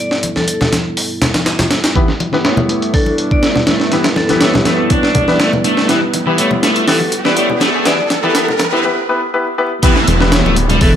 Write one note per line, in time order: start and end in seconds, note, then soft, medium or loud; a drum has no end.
0.00 1.92 G3 medium
0.00 1.92 B3 medium
0.00 1.92 E4 medium
0.00 1.92 A4 medium
0.00 0.19 D5 medium
0.11 snare soft
0.23 closed hi-hat medium
0.23 muted conga medium
0.36 0.73 A4 medium
0.36 snare soft
0.36 high conga medium
0.48 closed hi-hat medium
0.61 snare medium
0.61 muted conga medium
0.61 low conga medium
0.72 snare medium
0.72 closed hi-hat medium
0.72 high conga medium
0.97 open hi-hat medium
1.22 snare loud
1.22 closed hi-hat medium
1.22 low conga loud
1.34 snare medium
1.34 closed hi-hat medium
1.34 high conga medium
1.46 snare loud
1.46 closed hi-hat medium
1.59 snare loud
1.59 closed hi-hat medium
1.59 high conga medium
1.59 low conga medium
1.71 snare loud
1.71 closed hi-hat medium
1.84 snare loud
1.84 closed hi-hat medium
1.95 2.06 E3 loud
1.95 8.80 G3 medium
1.95 8.80 B3 medium
1.95 2.06 B3 medium
1.95 8.80 E4 medium
1.95 2.06 E4 medium
1.95 2.06 G4 medium
1.95 8.80 B4 medium
1.95 2.06 B4 medium
1.95 kick loud
1.95 closed hi-hat medium
1.95 riser medium
2.08 snare soft
2.20 closed hi-hat medium
2.20 muted conga medium
2.33 2.44 E3 medium
2.33 2.42 B3 medium
2.33 2.42 E4 medium
2.33 2.43 G4 medium
2.33 2.42 B4 medium
2.33 snare soft
2.45 2.56 A3 medium
2.45 3.90 B3 medium
2.45 3.90 E4 medium
2.45 3.90 G4 medium
2.45 3.90 C#5 medium
2.45 snare loud
2.45 closed hi-hat medium
2.57 muted conga medium
2.57 low conga medium
2.69 2.93 A3 medium
2.69 closed hi-hat medium
2.82 closed hi-hat soft
2.94 3.42 D4 medium
2.94 3.14 A4 medium
2.94 kick loud
2.94 open hi-hat medium
3.06 muted conga medium
3.18 closed hi-hat medium
3.31 3.39 D5 medium
3.31 kick medium
3.43 3.54 A3 medium
3.43 3.52 D5 medium
3.43 snare loud
3.43 closed hi-hat medium
3.56 snare soft
3.56 low conga medium
3.67 3.91 A3 medium
3.67 snare loud
3.67 closed hi-hat medium
3.67 muted conga medium
3.80 snare soft
3.92 4.03 E3 loud
3.92 4.03 B3 medium
3.92 4.03 E4 medium
3.92 4.03 G4 medium
3.92 4.03 B4 medium
3.92 snare soft
3.92 closed hi-hat medium
4.04 snare loud
4.04 closed hi-hat medium
4.16 4.26 A4 medium
4.16 snare soft
4.16 muted conga medium
4.29 4.41 E3 medium
4.29 4.40 B3 medium
4.29 4.40 E4 medium
4.29 4.40 G4 medium
4.29 4.38 A4 medium
4.29 4.40 B4 medium
4.29 snare soft
4.29 closed hi-hat medium
4.29 high conga medium
4.41 4.52 A3 medium
4.41 5.25 B3 medium
4.41 5.25 E4 medium
4.41 5.25 G4 medium
4.41 5.25 C#5 loud
4.41 snare loud
4.41 closed hi-hat medium
4.54 snare medium
4.54 muted conga medium
4.54 low conga loud
4.65 4.90 A3 medium
4.65 snare medium
4.65 closed hi-hat medium
4.65 high conga medium
4.90 5.39 D4 medium
4.90 kick loud
4.90 closed hi-hat medium
5.03 5.53 D5 medium
5.03 snare medium
5.15 kick loud
5.15 closed hi-hat medium
5.15 low conga loud
5.28 5.37 B3 medium
5.28 5.37 E4 medium
5.28 5.37 G4 medium
5.28 5.37 B4 medium
5.28 snare soft
5.28 high conga medium
5.40 5.51 A3 medium
5.40 snare loud
5.40 closed hi-hat medium
5.53 high conga medium
5.53 low conga medium
5.64 5.88 A3 medium
5.64 closed hi-hat medium
5.77 snare medium
5.89 6.00 E3 medium
5.89 5.99 B3 medium
5.89 5.99 E4 medium
5.89 5.99 G4 medium
5.89 5.99 B4 medium
5.89 snare soft
5.89 closed hi-hat medium
6.13 closed hi-hat medium
6.13 muted conga medium
6.26 6.38 E3 medium
6.26 6.36 B3 medium
6.26 6.36 E4 medium
6.26 6.36 G4 medium
6.26 6.36 B4 medium
6.38 6.49 A3 medium
6.38 6.86 B3 medium
6.38 6.86 E4 medium
6.38 6.86 G4 medium
6.38 6.86 C#5 medium
6.38 closed hi-hat medium
6.51 muted conga medium
6.51 low conga medium
6.63 6.86 A3 medium
6.63 snare medium
6.63 closed hi-hat medium
6.76 closed hi-hat soft
6.87 6.98 E3 loud
6.87 6.98 B3 medium
6.87 6.98 E4 medium
6.87 6.98 G4 medium
6.87 7.08 A4 loud
6.87 6.98 B4 medium
6.87 snare medium
6.87 open hi-hat medium
7.00 muted conga medium
7.12 closed hi-hat medium
7.25 7.36 E3 medium
7.25 7.34 B3 medium
7.25 7.34 E4 medium
7.25 7.34 G4 medium
7.25 7.34 B4 medium
7.25 7.33 D5 medium
7.25 snare medium
7.36 7.47 A3 medium
7.36 7.84 B3 medium
7.36 7.84 E4 medium
7.36 7.84 G4 medium
7.36 7.84 C#5 medium
7.36 7.45 D5 medium
7.36 closed hi-hat medium
7.50 low conga medium
7.60 7.84 A3 medium
7.60 snare medium
7.60 closed hi-hat medium
7.60 muted conga medium
7.85 7.97 E3 loud
7.85 7.96 B3 medium
7.85 7.96 E4 medium
7.85 7.96 G4 medium
7.85 7.96 B4 medium
7.85 8.06 D5 medium
7.85 snare medium
7.85 closed hi-hat medium
8.10 snare medium
8.10 closed hi-hat medium
8.10 muted conga medium
8.23 8.33 E3 medium
8.23 8.32 B3 medium
8.23 8.33 E4 medium
8.23 8.32 G4 medium
8.23 8.60 A4 medium
8.23 8.32 B4 loud
8.23 high conga medium
8.35 8.46 E3 loud
8.35 8.45 B3 medium
8.35 8.45 E4 medium
8.35 8.45 G4 medium
8.35 8.45 B4 loud
8.35 snare medium
8.35 closed hi-hat medium
8.48 muted conga medium
8.48 low conga medium
8.59 snare medium
8.59 closed hi-hat medium
8.59 high conga medium
8.72 8.83 E3 medium
8.72 8.82 B3 medium
8.72 8.82 E4 medium
8.72 8.82 G4 medium
8.72 8.82 B4 medium
8.84 8.94 B3 medium
8.84 8.94 E4 medium
8.84 8.94 G4 medium
8.84 8.94 B4 loud
9.09 9.19 B3 medium
9.09 9.19 E4 medium
9.09 9.19 G4 medium
9.09 9.19 B4 loud
9.34 9.44 B3 medium
9.34 9.44 E4 medium
9.34 9.44 G4 medium
9.34 9.44 B4 loud
9.58 9.68 B3 medium
9.58 9.68 E4 medium
9.58 9.68 G4 medium
9.58 9.68 B4 loud
9.83 10.06 E3 medium
9.83 10.96 G3 medium
9.83 10.96 B3 medium
9.83 9.93 B3 medium
9.83 10.96 E4 medium
9.83 9.93 E4 medium
9.83 9.93 G4 medium
9.83 10.96 B4 loud
9.83 9.93 B4 medium
9.83 kick loud
9.83 closed hi-hat medium
9.83 downlifter medium
9.96 snare soft
10.07 10.42 E1 loud
10.07 10.44 E3 loud
10.07 closed hi-hat medium
10.07 muted conga medium
10.21 10.30 B3 medium
10.21 10.30 E4 medium
10.21 10.30 G4 medium
10.21 10.30 B4 medium
10.21 snare soft
10.32 10.96 B3 medium
10.32 10.96 E4 medium
10.32 10.96 G4 medium
10.32 10.96 C#5 medium
10.32 snare loud
10.32 closed hi-hat medium
10.45 10.79 D1 loud
10.45 10.55 A3 medium
10.45 muted conga medium
10.56 closed hi-hat medium
10.70 10.79 G3 loud
10.70 closed hi-hat soft
10.70 low conga medium
10.81 10.96 E1 medium
10.81 10.92 E3 medium
10.81 10.96 A4 medium
10.81 kick loud
10.81 open hi-hat medium